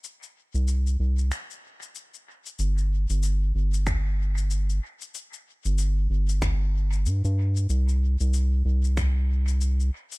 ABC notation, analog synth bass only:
X:1
M:4/4
L:1/16
Q:"Swing 16ths" 1/4=94
K:Cmix
V:1 name="Analog synth bass" clef=bass
z3 C,,3 C,,2 z8 | G,,,3 G,,,3 G,,,8 z2 | z3 G,,,3 G,,,2 G,,,4 G,, G,,3 | C,,3 C,,3 C,,8 z2 |]